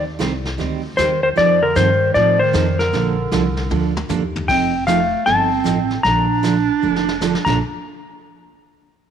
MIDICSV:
0, 0, Header, 1, 6, 480
1, 0, Start_track
1, 0, Key_signature, -2, "major"
1, 0, Tempo, 389610
1, 1689, Time_signature, 4, 2, 24, 8
1, 11216, End_track
2, 0, Start_track
2, 0, Title_t, "Electric slide guitar"
2, 0, Program_c, 0, 29
2, 1196, Note_on_c, 0, 72, 96
2, 1503, Note_off_c, 0, 72, 0
2, 1518, Note_on_c, 0, 72, 99
2, 1579, Note_off_c, 0, 72, 0
2, 1694, Note_on_c, 0, 74, 117
2, 2003, Note_on_c, 0, 70, 85
2, 2007, Note_off_c, 0, 74, 0
2, 2171, Note_on_c, 0, 72, 96
2, 2177, Note_off_c, 0, 70, 0
2, 2636, Note_off_c, 0, 72, 0
2, 2641, Note_on_c, 0, 74, 100
2, 2950, Note_on_c, 0, 72, 92
2, 2961, Note_off_c, 0, 74, 0
2, 3441, Note_on_c, 0, 70, 85
2, 3447, Note_off_c, 0, 72, 0
2, 5001, Note_off_c, 0, 70, 0
2, 5522, Note_on_c, 0, 79, 97
2, 5993, Note_off_c, 0, 79, 0
2, 5998, Note_on_c, 0, 77, 83
2, 6480, Note_on_c, 0, 81, 90
2, 6498, Note_off_c, 0, 77, 0
2, 7429, Note_off_c, 0, 81, 0
2, 7434, Note_on_c, 0, 82, 104
2, 9140, Note_off_c, 0, 82, 0
2, 9175, Note_on_c, 0, 82, 81
2, 9346, Note_off_c, 0, 82, 0
2, 11216, End_track
3, 0, Start_track
3, 0, Title_t, "Steel-string acoustic guitar"
3, 0, Program_c, 1, 25
3, 232, Note_on_c, 1, 51, 78
3, 239, Note_on_c, 1, 55, 81
3, 244, Note_on_c, 1, 60, 83
3, 247, Note_on_c, 1, 67, 80
3, 252, Note_on_c, 1, 72, 84
3, 382, Note_off_c, 1, 51, 0
3, 386, Note_off_c, 1, 55, 0
3, 388, Note_off_c, 1, 60, 0
3, 390, Note_off_c, 1, 67, 0
3, 392, Note_off_c, 1, 72, 0
3, 714, Note_on_c, 1, 51, 52
3, 717, Note_on_c, 1, 55, 59
3, 723, Note_on_c, 1, 60, 55
3, 728, Note_on_c, 1, 67, 58
3, 734, Note_on_c, 1, 72, 61
3, 990, Note_off_c, 1, 51, 0
3, 991, Note_off_c, 1, 55, 0
3, 994, Note_off_c, 1, 60, 0
3, 996, Note_off_c, 1, 67, 0
3, 999, Note_off_c, 1, 72, 0
3, 1203, Note_on_c, 1, 51, 73
3, 1207, Note_on_c, 1, 55, 73
3, 1211, Note_on_c, 1, 60, 77
3, 1217, Note_on_c, 1, 67, 76
3, 1220, Note_on_c, 1, 72, 76
3, 1348, Note_off_c, 1, 51, 0
3, 1350, Note_off_c, 1, 55, 0
3, 1352, Note_off_c, 1, 60, 0
3, 1355, Note_off_c, 1, 67, 0
3, 1356, Note_off_c, 1, 72, 0
3, 1671, Note_on_c, 1, 53, 54
3, 1679, Note_on_c, 1, 60, 53
3, 1682, Note_on_c, 1, 63, 63
3, 1688, Note_on_c, 1, 69, 65
3, 1948, Note_off_c, 1, 53, 0
3, 1952, Note_off_c, 1, 60, 0
3, 1953, Note_off_c, 1, 63, 0
3, 1956, Note_off_c, 1, 69, 0
3, 2158, Note_on_c, 1, 53, 76
3, 2164, Note_on_c, 1, 60, 84
3, 2174, Note_on_c, 1, 63, 87
3, 2176, Note_on_c, 1, 69, 84
3, 2305, Note_off_c, 1, 53, 0
3, 2308, Note_off_c, 1, 60, 0
3, 2313, Note_off_c, 1, 63, 0
3, 2314, Note_off_c, 1, 69, 0
3, 2644, Note_on_c, 1, 53, 56
3, 2653, Note_on_c, 1, 60, 62
3, 2659, Note_on_c, 1, 63, 61
3, 2662, Note_on_c, 1, 69, 59
3, 2914, Note_off_c, 1, 53, 0
3, 2919, Note_off_c, 1, 60, 0
3, 2922, Note_off_c, 1, 63, 0
3, 2923, Note_off_c, 1, 69, 0
3, 3119, Note_on_c, 1, 53, 76
3, 3123, Note_on_c, 1, 60, 77
3, 3128, Note_on_c, 1, 63, 77
3, 3132, Note_on_c, 1, 69, 75
3, 3266, Note_off_c, 1, 53, 0
3, 3267, Note_off_c, 1, 60, 0
3, 3270, Note_off_c, 1, 63, 0
3, 3272, Note_off_c, 1, 69, 0
3, 3609, Note_on_c, 1, 50, 56
3, 3615, Note_on_c, 1, 53, 58
3, 3619, Note_on_c, 1, 58, 58
3, 3622, Note_on_c, 1, 62, 54
3, 3623, Note_on_c, 1, 69, 57
3, 3877, Note_off_c, 1, 50, 0
3, 3880, Note_off_c, 1, 53, 0
3, 3881, Note_off_c, 1, 58, 0
3, 3883, Note_off_c, 1, 62, 0
3, 3883, Note_off_c, 1, 69, 0
3, 4085, Note_on_c, 1, 50, 75
3, 4091, Note_on_c, 1, 53, 81
3, 4092, Note_on_c, 1, 58, 75
3, 4101, Note_on_c, 1, 62, 88
3, 4101, Note_on_c, 1, 69, 78
3, 4228, Note_off_c, 1, 50, 0
3, 4231, Note_off_c, 1, 53, 0
3, 4232, Note_off_c, 1, 58, 0
3, 4236, Note_off_c, 1, 62, 0
3, 4236, Note_off_c, 1, 69, 0
3, 4559, Note_on_c, 1, 50, 51
3, 4565, Note_on_c, 1, 53, 61
3, 4572, Note_on_c, 1, 58, 56
3, 4575, Note_on_c, 1, 62, 57
3, 4577, Note_on_c, 1, 69, 57
3, 4832, Note_off_c, 1, 50, 0
3, 4835, Note_off_c, 1, 53, 0
3, 4838, Note_off_c, 1, 58, 0
3, 4839, Note_off_c, 1, 62, 0
3, 4841, Note_off_c, 1, 69, 0
3, 5039, Note_on_c, 1, 50, 73
3, 5045, Note_on_c, 1, 53, 83
3, 5047, Note_on_c, 1, 58, 77
3, 5057, Note_on_c, 1, 62, 81
3, 5058, Note_on_c, 1, 69, 79
3, 5186, Note_off_c, 1, 50, 0
3, 5188, Note_off_c, 1, 53, 0
3, 5189, Note_off_c, 1, 58, 0
3, 5194, Note_off_c, 1, 62, 0
3, 5195, Note_off_c, 1, 69, 0
3, 5521, Note_on_c, 1, 53, 51
3, 5527, Note_on_c, 1, 60, 56
3, 5535, Note_on_c, 1, 63, 61
3, 5535, Note_on_c, 1, 69, 53
3, 5793, Note_off_c, 1, 53, 0
3, 5795, Note_off_c, 1, 60, 0
3, 5799, Note_off_c, 1, 69, 0
3, 5800, Note_off_c, 1, 63, 0
3, 6000, Note_on_c, 1, 53, 78
3, 6009, Note_on_c, 1, 60, 76
3, 6011, Note_on_c, 1, 63, 79
3, 6013, Note_on_c, 1, 69, 84
3, 6146, Note_off_c, 1, 53, 0
3, 6151, Note_off_c, 1, 60, 0
3, 6152, Note_off_c, 1, 63, 0
3, 6153, Note_off_c, 1, 69, 0
3, 6478, Note_on_c, 1, 53, 52
3, 6486, Note_on_c, 1, 60, 60
3, 6493, Note_on_c, 1, 63, 56
3, 6496, Note_on_c, 1, 69, 55
3, 6751, Note_off_c, 1, 53, 0
3, 6755, Note_off_c, 1, 60, 0
3, 6758, Note_off_c, 1, 63, 0
3, 6760, Note_off_c, 1, 69, 0
3, 6949, Note_on_c, 1, 53, 69
3, 6958, Note_on_c, 1, 60, 77
3, 6964, Note_on_c, 1, 63, 77
3, 6966, Note_on_c, 1, 69, 73
3, 7100, Note_off_c, 1, 53, 0
3, 7105, Note_off_c, 1, 60, 0
3, 7108, Note_off_c, 1, 63, 0
3, 7109, Note_off_c, 1, 69, 0
3, 7433, Note_on_c, 1, 50, 53
3, 7442, Note_on_c, 1, 53, 52
3, 7445, Note_on_c, 1, 58, 55
3, 7448, Note_on_c, 1, 62, 62
3, 7454, Note_on_c, 1, 69, 56
3, 7709, Note_off_c, 1, 50, 0
3, 7713, Note_off_c, 1, 53, 0
3, 7715, Note_off_c, 1, 58, 0
3, 7716, Note_off_c, 1, 62, 0
3, 7719, Note_off_c, 1, 69, 0
3, 7920, Note_on_c, 1, 53, 83
3, 7921, Note_on_c, 1, 50, 75
3, 7926, Note_on_c, 1, 58, 77
3, 7930, Note_on_c, 1, 62, 87
3, 7934, Note_on_c, 1, 69, 93
3, 8066, Note_off_c, 1, 50, 0
3, 8066, Note_off_c, 1, 53, 0
3, 8069, Note_off_c, 1, 58, 0
3, 8071, Note_off_c, 1, 62, 0
3, 8073, Note_off_c, 1, 69, 0
3, 8404, Note_on_c, 1, 50, 58
3, 8411, Note_on_c, 1, 53, 51
3, 8416, Note_on_c, 1, 58, 55
3, 8417, Note_on_c, 1, 62, 57
3, 8420, Note_on_c, 1, 69, 65
3, 8674, Note_off_c, 1, 50, 0
3, 8678, Note_off_c, 1, 53, 0
3, 8680, Note_off_c, 1, 58, 0
3, 8681, Note_off_c, 1, 62, 0
3, 8683, Note_off_c, 1, 69, 0
3, 8882, Note_on_c, 1, 50, 69
3, 8888, Note_on_c, 1, 53, 74
3, 8890, Note_on_c, 1, 58, 74
3, 8895, Note_on_c, 1, 62, 74
3, 8899, Note_on_c, 1, 69, 90
3, 9027, Note_off_c, 1, 50, 0
3, 9031, Note_off_c, 1, 53, 0
3, 9032, Note_off_c, 1, 58, 0
3, 9034, Note_off_c, 1, 62, 0
3, 9036, Note_off_c, 1, 69, 0
3, 9191, Note_on_c, 1, 46, 65
3, 9195, Note_on_c, 1, 50, 69
3, 9197, Note_on_c, 1, 53, 69
3, 9206, Note_on_c, 1, 58, 70
3, 9207, Note_on_c, 1, 62, 79
3, 9215, Note_on_c, 1, 69, 70
3, 9332, Note_off_c, 1, 46, 0
3, 9334, Note_off_c, 1, 50, 0
3, 9335, Note_off_c, 1, 53, 0
3, 9339, Note_off_c, 1, 58, 0
3, 9340, Note_off_c, 1, 62, 0
3, 9344, Note_off_c, 1, 69, 0
3, 11216, End_track
4, 0, Start_track
4, 0, Title_t, "Clarinet"
4, 0, Program_c, 2, 71
4, 1210, Note_on_c, 2, 51, 83
4, 1495, Note_off_c, 2, 51, 0
4, 1514, Note_on_c, 2, 51, 81
4, 1592, Note_off_c, 2, 51, 0
4, 1691, Note_on_c, 2, 53, 96
4, 1976, Note_off_c, 2, 53, 0
4, 1992, Note_on_c, 2, 50, 76
4, 2155, Note_off_c, 2, 50, 0
4, 2174, Note_on_c, 2, 51, 85
4, 2618, Note_off_c, 2, 51, 0
4, 2648, Note_on_c, 2, 53, 86
4, 2960, Note_on_c, 2, 51, 88
4, 2978, Note_off_c, 2, 53, 0
4, 3432, Note_off_c, 2, 51, 0
4, 3440, Note_on_c, 2, 50, 79
4, 5001, Note_off_c, 2, 50, 0
4, 5531, Note_on_c, 2, 60, 81
4, 5976, Note_off_c, 2, 60, 0
4, 5999, Note_on_c, 2, 57, 70
4, 6450, Note_off_c, 2, 57, 0
4, 6476, Note_on_c, 2, 60, 91
4, 7393, Note_off_c, 2, 60, 0
4, 7455, Note_on_c, 2, 62, 100
4, 9151, Note_off_c, 2, 62, 0
4, 9191, Note_on_c, 2, 62, 72
4, 9354, Note_off_c, 2, 62, 0
4, 11216, End_track
5, 0, Start_track
5, 0, Title_t, "Upright bass"
5, 0, Program_c, 3, 32
5, 0, Note_on_c, 3, 39, 83
5, 230, Note_off_c, 3, 39, 0
5, 249, Note_on_c, 3, 36, 90
5, 715, Note_off_c, 3, 36, 0
5, 726, Note_on_c, 3, 38, 93
5, 1193, Note_off_c, 3, 38, 0
5, 1211, Note_on_c, 3, 39, 92
5, 1675, Note_off_c, 3, 39, 0
5, 1691, Note_on_c, 3, 41, 79
5, 2156, Note_off_c, 3, 41, 0
5, 2171, Note_on_c, 3, 43, 91
5, 2635, Note_off_c, 3, 43, 0
5, 2655, Note_on_c, 3, 45, 88
5, 3117, Note_off_c, 3, 45, 0
5, 3133, Note_on_c, 3, 41, 91
5, 3596, Note_off_c, 3, 41, 0
5, 3614, Note_on_c, 3, 34, 81
5, 4077, Note_off_c, 3, 34, 0
5, 4085, Note_on_c, 3, 36, 89
5, 4552, Note_off_c, 3, 36, 0
5, 4571, Note_on_c, 3, 38, 81
5, 5035, Note_off_c, 3, 38, 0
5, 5044, Note_on_c, 3, 39, 93
5, 5511, Note_off_c, 3, 39, 0
5, 5532, Note_on_c, 3, 29, 90
5, 6298, Note_off_c, 3, 29, 0
5, 6491, Note_on_c, 3, 31, 82
5, 6898, Note_off_c, 3, 31, 0
5, 6964, Note_on_c, 3, 33, 86
5, 7374, Note_off_c, 3, 33, 0
5, 7445, Note_on_c, 3, 34, 91
5, 8215, Note_off_c, 3, 34, 0
5, 8413, Note_on_c, 3, 29, 81
5, 9041, Note_off_c, 3, 29, 0
5, 9198, Note_on_c, 3, 34, 85
5, 9358, Note_off_c, 3, 34, 0
5, 11216, End_track
6, 0, Start_track
6, 0, Title_t, "Drums"
6, 246, Note_on_c, 9, 38, 67
6, 246, Note_on_c, 9, 44, 60
6, 369, Note_off_c, 9, 38, 0
6, 369, Note_off_c, 9, 44, 0
6, 557, Note_on_c, 9, 38, 43
6, 681, Note_off_c, 9, 38, 0
6, 733, Note_on_c, 9, 25, 48
6, 733, Note_on_c, 9, 38, 45
6, 857, Note_off_c, 9, 38, 0
6, 1210, Note_on_c, 9, 38, 71
6, 1210, Note_on_c, 9, 44, 60
6, 1334, Note_off_c, 9, 38, 0
6, 1334, Note_off_c, 9, 44, 0
6, 1691, Note_off_c, 9, 25, 0
6, 1691, Note_on_c, 9, 25, 53
6, 1691, Note_on_c, 9, 38, 48
6, 1814, Note_off_c, 9, 38, 0
6, 2165, Note_on_c, 9, 38, 66
6, 2165, Note_on_c, 9, 44, 58
6, 2288, Note_off_c, 9, 38, 0
6, 2288, Note_off_c, 9, 44, 0
6, 2648, Note_off_c, 9, 25, 0
6, 2648, Note_on_c, 9, 25, 47
6, 2648, Note_on_c, 9, 38, 43
6, 2771, Note_off_c, 9, 38, 0
6, 3128, Note_on_c, 9, 38, 71
6, 3128, Note_on_c, 9, 44, 49
6, 3251, Note_off_c, 9, 38, 0
6, 3251, Note_off_c, 9, 44, 0
6, 3441, Note_on_c, 9, 38, 43
6, 3564, Note_off_c, 9, 38, 0
6, 3614, Note_off_c, 9, 25, 0
6, 3614, Note_on_c, 9, 25, 43
6, 3614, Note_on_c, 9, 38, 48
6, 3737, Note_off_c, 9, 38, 0
6, 4089, Note_on_c, 9, 38, 69
6, 4089, Note_on_c, 9, 44, 55
6, 4213, Note_off_c, 9, 38, 0
6, 4213, Note_off_c, 9, 44, 0
6, 4396, Note_on_c, 9, 38, 44
6, 4519, Note_off_c, 9, 38, 0
6, 4568, Note_on_c, 9, 47, 46
6, 4691, Note_off_c, 9, 47, 0
6, 4887, Note_on_c, 9, 47, 69
6, 5010, Note_off_c, 9, 47, 0
6, 5046, Note_on_c, 9, 43, 67
6, 5046, Note_on_c, 9, 44, 56
6, 5169, Note_off_c, 9, 43, 0
6, 5169, Note_off_c, 9, 44, 0
6, 5369, Note_on_c, 9, 43, 88
6, 5492, Note_off_c, 9, 43, 0
6, 5530, Note_on_c, 9, 36, 81
6, 5531, Note_off_c, 9, 25, 0
6, 5531, Note_on_c, 9, 25, 49
6, 5531, Note_on_c, 9, 38, 43
6, 5531, Note_on_c, 9, 49, 78
6, 5653, Note_off_c, 9, 36, 0
6, 5654, Note_off_c, 9, 38, 0
6, 5654, Note_off_c, 9, 49, 0
6, 6007, Note_on_c, 9, 38, 64
6, 6007, Note_on_c, 9, 44, 61
6, 6130, Note_off_c, 9, 38, 0
6, 6130, Note_off_c, 9, 44, 0
6, 6486, Note_off_c, 9, 25, 0
6, 6486, Note_on_c, 9, 25, 46
6, 6486, Note_on_c, 9, 38, 49
6, 6610, Note_off_c, 9, 38, 0
6, 6966, Note_on_c, 9, 38, 63
6, 6966, Note_on_c, 9, 44, 57
6, 7089, Note_off_c, 9, 38, 0
6, 7089, Note_off_c, 9, 44, 0
6, 7274, Note_on_c, 9, 38, 43
6, 7397, Note_off_c, 9, 38, 0
6, 7445, Note_off_c, 9, 25, 0
6, 7445, Note_on_c, 9, 25, 53
6, 7445, Note_on_c, 9, 38, 47
6, 7569, Note_off_c, 9, 38, 0
6, 7932, Note_on_c, 9, 38, 60
6, 7932, Note_on_c, 9, 44, 55
6, 8055, Note_off_c, 9, 38, 0
6, 8055, Note_off_c, 9, 44, 0
6, 8575, Note_on_c, 9, 38, 54
6, 8698, Note_off_c, 9, 38, 0
6, 8729, Note_on_c, 9, 38, 69
6, 8784, Note_off_c, 9, 25, 0
6, 8853, Note_off_c, 9, 38, 0
6, 8888, Note_on_c, 9, 38, 67
6, 8888, Note_on_c, 9, 44, 66
6, 9011, Note_off_c, 9, 38, 0
6, 9011, Note_off_c, 9, 44, 0
6, 9052, Note_on_c, 9, 38, 67
6, 9175, Note_off_c, 9, 38, 0
6, 9194, Note_on_c, 9, 38, 76
6, 9194, Note_on_c, 9, 49, 77
6, 9197, Note_on_c, 9, 36, 91
6, 9318, Note_off_c, 9, 38, 0
6, 9318, Note_off_c, 9, 49, 0
6, 9320, Note_off_c, 9, 36, 0
6, 11216, End_track
0, 0, End_of_file